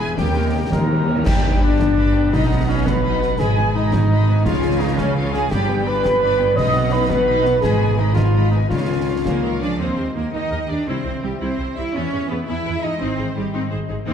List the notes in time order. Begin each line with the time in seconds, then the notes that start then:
Already playing: E1 E2 E3 G#4 B4 E5 G#5 B5
0.00 G#3 E4 G#4 G#5
0.08 B3
0.16 D#2 D#3 G3 G4 A#4 G5, concert bass drum, snare
0.25 D#3 A#3
0.33 D#3 A#3 A#4
0.40 D#3
0.45 D#3 D#5
0.53 D#3 G3 G4 G5
0.63 D#3 A#5
0.70 D#2 D#3 A#3 A#4 A#5 D#6, concert bass drum, snare
0.79 D#3 A#5
0.86 D#3 C5
0.91 D#3 G3 G4 G5
1.00 D#3 D#5
1.07 D#3 A#3 G4 A#4
1.17 D#3 A#3
1.25 G1 G2 D4 G4 D5 G5 B5, concert bass drum, snare, crash
1.45 D3 B3 B4 G5
1.61 D4 D5 B5
1.79 B3 B4 G5, concert bass drum, snare
1.97 D4 D5 B5
2.15 B3 B4 G5
2.32 B1 B2 D#4 D#5 B5, concert bass drum, snare
2.49 F#3 B3 B4 F#5
2.68 C#4 D#4 C#5 D#5 B5
2.86 B3 B4 F#5 B5, concert bass drum, snare
3.03 D#4 D#5 B5
3.20 B3 B4 F#5, snare
3.39 G#1 G#2 G#3 G#4 D#5 G#5 B5, concert bass drum, snare, crash
3.56 D#3 B3 B4 G#5
3.73 G#3 D#4 D#5 B5
3.91 B3 B4 G#5, concert bass drum, snare
4.10 G#3 D#5 B5
4.28 B3 B4 G#5
4.45 C#2 C#3 F4 C#5 F5, concert bass drum, snare
4.63 G#3 C#4 F5 G#5
4.79 C#4 D#4 F4 C#5 D#5 F5
4.97 C#4 C#5 F5 G#5, concert bass drum, snare
5.16 F4 G#4 C#5 F5
5.33 C#4 G#4 C#5 F5 G#5, snare
5.50 G1 G2 D4 G4 D5 G5 B5, concert bass drum, snare, crash
5.69 D3 B3 B4 G5
5.84 D4 B4 D5 B5
6.04 B3 B4 G5, concert bass drum, snare
6.22 D4 D5 B5
6.38 B3 B4 G5
6.56 B1 B2 D#4 D#5 B5 D#6, concert bass drum, snare
6.74 F#3 B3 B4 F#5
6.91 D#4 B4 D#5 B5
7.07 B3 B4 F#5 B5, concert bass drum, snare
7.27 D#4 D#5 B5
7.45 B3 B4 F#5, snare
7.61 G#1 G#2 G#3 G#4 D#5 G#5 B5, concert bass drum, snare, crash
7.80 D#3 B3 B4 G#5
7.98 G#3 D#4 D#5 B5
8.13 B3 F4 B4 F5, concert bass drum, snare
8.18 G#5
8.34 G#3 D#5 B5
8.51 B3 D#4 B4 D#5 G#5
8.69 C#2 C#3 F4 C#5 F5, concert bass drum, snare
8.88 G#3 C#4 F5 G#5
9.06 C#4 F4 C#5 F5
9.24 C#3 A#3 C#4 A#4 C#5 F5 G#5, concert bass drum, snare
9.43 D#3 F4 G#4 C#5 F5
9.61 F3 C#4 D4 C#5 D5 F5 G#5
9.79 D#2 D#3 A#3 C4 D#4 G4 C5 D#5
9.88 D#4
9.97 D#2 G4 A#4
10.07 A#4
10.15 D#2 A#3 D#4 G4 A#4
10.26 G5
10.33 D#2 A#3 D#4 D#5 A#5
10.43 G5
10.51 D#2 G4 A#4
10.61 A#4
10.69 D#2 G3 D4 D#4 G4 D5
10.79 D#4
10.87 C2 C3 G3 C4 E4 C5 E5
10.96 C4
11.05 C2 E4 C5
11.15 C5
11.22 C2 G3 C4 G4
11.32 E5
11.40 C2 G3 C4 E4 C5 C6
11.51 E5
11.59 C2 E4 G4 C5
11.69 C5
11.76 C2 G3 C4 E4 G4 E5
11.86 C4
11.93 E2 E3 B3 C#4 E4 G#4 C#5
12.04 G#3
12.12 E2 G#4 B4
12.21 G#4
12.29 E2 B3 E4 G#4 B4 E5
12.39 B5
12.47 E2 B3 E4 E5 G#5
12.57 B5
12.65 E2 G#4 B4 E5
12.74 G#4
12.83 E2 D#4 E4 G#4 D#5
12.92 G#3
13.00 G#1 G#2 C4 D#4 C5 D#5
13.09 D#3
13.18 G#1 D#4 G#4 C5
13.28 C5
13.36 G#1 G3 D#4 G4 G#4
13.45 D#5
13.54 G#1 C4 D#4 C6
13.62 D#5
13.71 G#1 G#4 C5
13.81 C5
13.89 G#1 G#3 D#4 G#4
13.98 D#3
14.06 D#2 D#3 A#3 C4 D#4 G4 C5